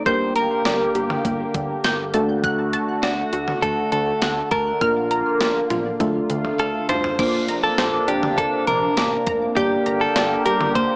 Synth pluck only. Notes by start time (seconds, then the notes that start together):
0.06 G6
0.36 A#5
0.65 D5
0.95 G4
1.25 A#3
1.55 D3
1.84 G6
2.14 A5
2.44 F#6
2.73 A5
3.03 D5
3.33 F#4
3.63 A3
3.92 D3
4.22 F#6
4.52 A5
4.81 F6
5.11 A#5
5.41 D5
5.70 F4
6.00 A3
6.30 D3
6.60 F6
6.89 A5
7.19 D6
7.49 A#5
7.78 C5
8.08 D4
8.38 A#3
8.67 C3
8.97 D6
9.27 A#5
9.57 G6
9.86 A#5
10.16 D5
10.46 G4
10.75 A#3